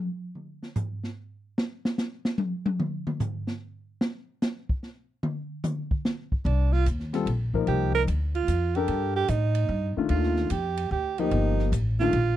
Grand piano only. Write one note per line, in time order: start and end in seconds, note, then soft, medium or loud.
7.13 7.25 G3 medium
7.13 7.25 C4 medium
7.13 7.25 F4 medium
7.13 7.26 A4 medium
7.54 8.05 F3 medium
7.54 8.05 A#3 medium
7.54 8.05 D#4 medium
7.54 8.06 A#4 medium
8.76 9.27 D4 medium
8.76 9.27 G4 medium
8.76 9.27 A4 medium
8.76 9.27 A#4 medium
9.97 10.48 D#3 medium
9.97 10.48 A3 medium
9.97 10.49 D4 medium
9.97 10.49 F4 medium
11.19 11.70 F3 medium
11.19 11.70 A#3 medium
11.19 11.71 D#4 medium
11.19 11.71 G4 medium
12.01 12.12 D#3 medium
12.01 12.13 A3 medium
12.01 12.13 D4 medium
12.01 12.13 F4 medium